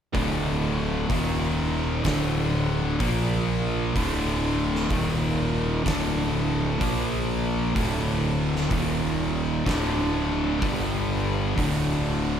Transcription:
0.13 1.05 D1 loud
0.13 1.08 D2 medium
0.13 1.08 A2 loud
0.13 1.08 D3 loud
0.13 kick loud
0.13 open hi-hat medium
1.08 2.00 D#1 loud
1.08 2.03 D#2 loud
1.08 2.03 A#2 loud
1.08 2.03 D#3 loud
1.08 kick loud
1.08 open hi-hat medium
2.04 2.96 D1 loud
2.04 2.99 D2 medium
2.04 2.99 A2 loud
2.04 3.00 D3 loud
2.04 kick medium
2.04 snare loud
2.04 open hi-hat medium
2.99 3.91 A#1 medium
2.99 3.93 A#2 loud
2.99 3.93 F3 loud
2.99 3.94 A#3 loud
2.99 kick loud
2.99 open hi-hat medium
3.94 4.86 D1 loud
3.94 4.88 D2 loud
3.94 4.89 A2 medium
3.94 4.89 D3 loud
3.94 kick loud
3.94 open hi-hat medium
4.75 snare soft
4.89 5.82 D#1 medium
4.89 5.84 D#2 loud
4.89 5.84 A#2 loud
4.89 5.84 D#3 loud
4.89 kick loud
4.89 open hi-hat medium
5.84 6.77 D1 loud
5.84 6.79 D2 loud
5.84 6.79 A2 loud
5.84 6.80 D3 loud
5.84 kick loud
5.84 snare loud
5.84 open hi-hat medium
6.80 7.72 A#1 medium
6.80 7.74 A#2 loud
6.80 7.75 F3 loud
6.80 7.75 A#3 loud
6.80 kick loud
6.80 open hi-hat medium
7.74 8.67 D1 loud
7.74 8.69 D2 medium
7.74 8.70 A2 loud
7.74 8.70 D3 loud
7.74 kick loud
7.74 open hi-hat medium
8.56 snare soft
8.71 9.62 D#1 loud
8.71 9.65 D#2 medium
8.71 9.66 A#2 loud
8.71 9.66 D#3 loud
8.71 kick medium
8.71 open hi-hat medium
9.66 10.58 D1 medium
9.66 10.60 D2 loud
9.66 10.61 A2 loud
9.66 10.61 D3 loud
9.66 kick loud
9.66 snare loud
9.66 open hi-hat medium
10.61 11.53 G1 loud
10.61 11.56 G2 medium
10.61 11.56 D3 loud
10.61 11.56 G3 loud
10.61 kick loud
10.61 open hi-hat medium
11.57 12.40 D1 medium
11.57 12.40 D2 medium
11.57 12.40 A2 loud
11.57 12.40 D3 loud
11.57 kick loud
11.57 open hi-hat medium

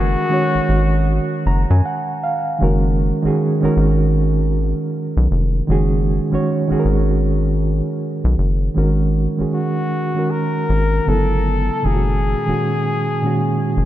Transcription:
0.00 0.16 F#1 loud
0.00 0.26 D#3 medium
0.00 0.27 G#3 medium
0.00 0.27 C#4 medium
0.00 0.28 F#4 medium
0.00 1.42 F#4 loud
0.00 0.32 A#4 medium
0.29 1.76 D#3 medium
0.29 1.77 G#3 medium
0.29 1.77 C#4 medium
0.29 1.78 F#4 medium
0.33 1.79 C#5 medium
0.55 0.60 G#1 soft
0.69 1.20 G#1 medium
1.46 1.66 F#1 loud
1.46 1.69 A#5 medium
1.70 1.82 F#2 loud
1.70 1.84 G#5 medium
1.85 2.21 F#5 medium
2.23 2.59 F5 medium
2.59 3.12 F#1 medium
2.59 3.18 D#3 medium
2.59 3.19 G#3 medium
2.59 3.19 C#4 medium
2.59 3.20 F#4 medium
2.63 3.20 A#4 medium
3.22 3.30 G#1 soft
3.22 3.58 D#3 medium
3.22 3.59 G#3 medium
3.22 3.60 C#4 medium
3.22 3.60 F#4 medium
3.27 3.61 G#4 medium
3.60 3.68 G#1 soft
3.60 5.03 D#3 medium
3.60 5.04 G#3 medium
3.60 5.04 C#4 medium
3.60 5.05 F#4 medium
3.65 5.05 A#4 medium
3.77 4.74 G#1 medium
5.17 5.28 B1 medium
5.31 5.62 F1 medium
5.67 6.20 F#1 medium
5.67 6.26 D#3 medium
5.67 6.27 G#3 medium
5.67 6.27 C#4 medium
5.67 6.28 F#4 medium
5.72 6.28 G#4 medium
6.30 6.38 G#1 soft
6.30 6.66 D#3 medium
6.30 6.67 G#3 medium
6.30 6.67 C#4 medium
6.30 6.68 F#4 medium
6.35 6.68 C#5 medium
6.68 6.76 G#1 soft
6.68 8.11 D#3 medium
6.68 8.12 G#3 medium
6.68 8.12 C#4 medium
6.68 8.13 F#4 medium
6.73 6.76 G#4 medium
6.80 8.17 A#4 medium
6.85 7.82 G#1 medium
8.24 8.36 B1 medium
8.38 8.69 F#1 medium
8.74 9.28 G#1 medium
8.74 9.33 D#3 medium
8.74 9.34 G#3 medium
8.74 9.35 C#4 medium
8.74 9.35 F#4 medium
8.78 9.36 A#4 medium
9.37 9.45 G#1 soft
9.37 10.09 D#3 medium
9.37 10.09 G#3 medium
9.37 10.10 C#4 medium
9.37 10.11 F#4 soft
9.41 10.11 G#4 medium
9.54 10.32 F#4 medium
10.14 11.06 D#3 medium
10.14 11.07 G#3 medium
10.14 11.07 C#4 soft
10.14 11.08 F#4 soft
10.19 11.08 A#4 medium
10.31 11.10 A#4 medium
10.70 11.00 G#1 medium
11.05 11.70 G1 medium
11.05 11.80 C#3 medium
11.05 11.80 F#3 medium
11.05 11.81 B3 medium
11.05 11.81 E4 medium
11.05 11.87 A4 medium
11.10 11.82 A4 medium
11.82 12.35 F#1 medium
11.82 12.41 A#2 medium
11.82 12.42 D#3 medium
11.82 12.42 G#3 medium
11.82 12.43 C#4 medium
11.82 13.85 G#4 medium
11.87 11.93 F4 medium
11.93 12.47 F#4 medium
12.45 12.53 F#1 soft
12.45 13.17 A#2 medium
12.45 13.17 D#3 medium
12.45 13.18 G#3 soft
12.45 13.18 C#4 medium
12.49 13.19 F#4 medium
13.22 13.85 A#2 medium
13.22 13.85 D#3 medium
13.22 13.85 G#3 medium
13.22 13.85 C#4 medium
13.26 13.85 F#4 medium
13.77 13.85 F#1 medium

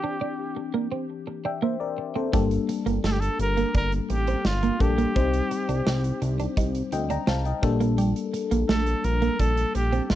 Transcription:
0.00 0.28 E3 medium
0.00 0.28 C4 medium
0.00 0.29 D4 medium
0.00 0.16 D4 medium
0.00 0.29 G4 medium
0.00 0.57 G4 medium
0.21 0.34 D4 medium
0.57 muted clean electric guitar stroke soft
0.74 0.86 A#3 medium
0.92 1.04 C4 medium
1.27 muted clean electric guitar stroke soft
1.45 1.57 D4 medium
1.45 1.62 E5 medium
1.45 1.62 G5 medium
1.62 1.75 A#3 medium
1.62 1.80 C5 medium
1.62 1.80 E5 medium
1.80 2.14 A#4 medium
1.80 2.14 D5 medium
1.98 muted clean electric guitar stroke soft
2.16 2.28 C4 medium
2.16 2.33 A4 soft
2.16 2.49 C5 medium
2.33 2.59 G1 medium
2.33 3.41 G3 medium
2.33 2.46 G3 medium
2.33 3.41 A#3 medium
2.33 3.41 D4 medium
2.33 3.41 A4 medium
2.33 kick loud
2.33 closed hi-hat medium
2.51 closed hi-hat medium
2.69 muted clean electric guitar stroke soft
2.69 closed hi-hat medium
2.86 2.99 G1 medium
2.86 2.98 A#3 medium
2.86 closed hi-hat soft
3.04 3.29 G1 medium
3.04 3.16 A3 medium
3.04 3.14 A4 medium
3.04 snare medium
3.12 3.22 G4 medium
3.20 3.40 A4 medium
3.20 closed hi-hat medium
3.39 3.65 G1 medium
3.39 3.73 A#4 medium
3.39 muted clean electric guitar stroke soft
3.39 closed hi-hat medium
3.57 3.69 A#3 medium
3.57 closed hi-hat soft
3.75 4.00 G1 loud
3.75 3.87 D4 medium
3.75 3.92 A#4 loud
3.75 kick medium
3.75 closed hi-hat medium
3.92 closed hi-hat soft
4.10 4.36 A1 medium
4.10 4.48 G4 medium
4.10 muted clean electric guitar stroke soft
4.10 closed hi-hat medium
4.27 4.40 C4 medium
4.27 closed hi-hat soft
4.45 4.71 G1 loud
4.45 4.83 F4 medium
4.45 snare medium
4.63 4.75 A#3 medium
4.63 closed hi-hat soft
4.80 5.06 A#1 medium
4.80 5.07 G3 medium
4.80 5.07 A#3 medium
4.80 5.07 D4 medium
4.80 6.22 G4 medium
4.80 5.08 A4 medium
4.80 muted clean electric guitar stroke soft
4.80 kick medium
4.80 closed hi-hat medium
4.98 5.10 A#3 medium
4.98 closed hi-hat medium
5.15 5.41 C2 loud
5.15 6.23 G3 medium
5.15 5.28 C4 medium
5.15 6.24 C4 medium
5.15 6.24 D#4 medium
5.15 6.24 C5 medium
5.15 kick loud
5.15 closed hi-hat medium
5.33 closed hi-hat medium
5.51 muted clean electric guitar stroke soft
5.51 closed hi-hat medium
5.69 5.82 C2 medium
5.69 5.81 D4 medium
5.69 closed hi-hat soft
5.87 6.12 C2 medium
5.87 5.99 C4 medium
5.87 snare medium
6.04 closed hi-hat medium
6.22 6.47 C2 loud
6.22 muted clean electric guitar stroke soft
6.22 closed hi-hat medium
6.40 6.52 D4 medium
6.40 closed hi-hat soft
6.57 6.83 C2 medium
6.57 6.70 D#4 medium
6.57 kick medium
6.57 closed hi-hat medium
6.75 closed hi-hat soft
6.92 7.18 D2 medium
6.92 7.10 D#5 soft
6.92 7.09 G5 medium
6.92 muted clean electric guitar stroke soft
6.92 closed hi-hat medium
7.10 7.22 D4 medium
7.10 7.27 G5 medium
7.10 7.27 A#5 medium
7.10 closed hi-hat soft
7.27 7.53 C2 medium
7.27 7.40 C4 medium
7.27 7.45 F5 medium
7.27 7.45 A5 medium
7.27 snare medium
7.45 7.79 D#5 soft
7.45 7.79 G5 medium
7.45 closed hi-hat soft
7.62 8.14 A#1 loud
7.62 8.76 G3 medium
7.62 8.76 A#3 medium
7.62 8.76 D4 medium
7.62 8.76 A4 loud
7.62 muted clean electric guitar stroke soft
7.62 kick loud
7.62 closed hi-hat medium
7.81 7.93 A#3 medium
7.81 closed hi-hat medium
7.98 8.10 G3 medium
7.98 closed hi-hat medium
8.16 closed hi-hat medium
8.34 muted clean electric guitar stroke soft
8.34 closed hi-hat medium
8.51 8.64 A#1 medium
8.51 8.64 A#3 medium
8.51 closed hi-hat soft
8.69 8.95 A#1 loud
8.69 8.81 A3 medium
8.69 9.06 A4 medium
8.69 snare medium
8.87 closed hi-hat medium
9.04 9.30 A#1 medium
9.04 9.42 A#4 medium
9.04 muted clean electric guitar stroke soft
9.04 closed hi-hat medium
9.22 9.34 A#3 medium
9.22 closed hi-hat soft
9.39 9.65 A#1 loud
9.39 9.52 D4 medium
9.39 9.75 A4 loud
9.39 kick medium
9.39 closed hi-hat medium
9.57 closed hi-hat soft
9.75 10.00 A#1 medium
9.75 10.05 G4 medium
9.75 muted clean electric guitar stroke soft
9.75 closed hi-hat medium
9.92 10.05 C4 medium
9.92 closed hi-hat soft
10.05 10.12 G4 medium
10.10 10.15 A#1 medium
10.10 10.15 F4 medium
10.10 snare medium

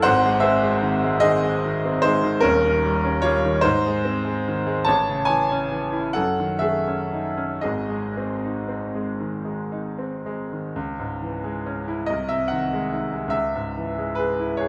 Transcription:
0.02 2.39 G#1 medium
0.02 2.39 G#2 medium
0.02 0.40 C5 medium
0.02 0.43 F#5 loud
0.25 0.56 G#3 medium
0.40 0.75 C4 medium
0.40 1.17 G#4 medium
0.40 1.21 E5 medium
0.63 0.95 G#3 medium
0.82 1.14 D#3 medium
1.03 1.35 G#3 medium
1.20 1.55 D#3 medium
1.20 1.98 G#4 medium
1.20 2.01 D#5 loud
1.44 1.75 G#3 medium
1.65 1.96 D#3 medium
1.85 2.16 C4 soft
2.02 2.36 G#3 medium
2.02 2.40 D#4 medium
2.02 2.42 C5 loud
2.24 2.43 D#3 medium
2.40 3.61 D#1 medium
2.40 3.03 C#4 medium
2.40 3.23 A#4 loud
2.44 3.61 D#2 medium
2.65 2.97 D#3 medium
2.85 3.17 G3 medium
3.05 3.37 C#4 medium
3.22 3.56 G3 medium
3.22 3.60 F4 medium
3.22 3.63 C#5 loud
3.45 3.64 D#3 medium
3.61 4.83 G#2 medium
3.61 4.82 D#4 medium
3.61 4.86 C5 loud
3.86 4.17 G#3 soft
4.05 4.37 C4 medium
4.25 4.58 G#3 medium
4.48 4.80 D#3 medium
4.67 4.87 G#3 medium
4.85 6.13 A1 medium
4.85 5.25 C#5 medium
4.85 5.28 A5 medium
5.09 5.42 C#3 soft
5.25 5.63 E3 soft
5.25 6.11 C#5 medium
5.25 6.14 G#5 medium
5.52 5.85 C#4 medium
5.72 6.07 E3 soft
5.92 6.15 E4 medium
6.13 7.60 F#2 medium
6.13 6.58 A4 medium
6.13 6.61 F#5 medium
6.40 6.77 D#3 soft
6.59 7.02 A3 soft
6.59 7.59 G#4 medium
6.59 7.62 E5 medium
6.88 7.28 C#4 soft
7.13 7.54 D#4 soft
7.37 7.64 C#4 soft
7.61 10.71 G#1 soft
7.61 10.72 G#2 soft
7.61 10.20 G#4 medium
7.61 10.24 D#5 medium
7.89 8.31 G#3 soft
8.17 8.58 C4 soft
8.44 8.84 D#4 soft
8.69 9.09 C4 soft
8.95 9.35 G#3 soft
9.21 9.61 D#3 soft
9.45 9.87 G#3 soft
9.72 10.15 D#4 soft
9.98 10.41 C4 soft
10.26 10.66 G#3 soft
10.53 10.76 D#3 soft
10.76 12.05 C#2 medium
10.99 11.35 G#2 soft
11.22 11.57 E3 soft
11.44 11.79 G#3 soft
11.66 12.01 C#4 soft
11.88 12.09 E4 soft
12.06 13.30 C2 medium
12.06 12.28 D#5 medium
12.29 12.63 C3 soft
12.29 12.50 E5 medium
12.48 13.32 F#5 medium
12.52 12.84 D#3 soft
12.73 13.05 G#3 soft
12.92 13.25 D#4 soft
13.12 13.33 G#3 soft
13.28 14.68 C#2 medium
13.28 14.15 E5 medium
13.55 13.88 G#2 soft
13.77 14.09 E3 soft
13.98 14.30 G#3 soft
14.15 14.51 G#4 soft
14.15 14.58 B4 medium
14.40 14.68 E4 soft
14.57 14.68 G#4 soft
14.57 14.68 C#5 medium

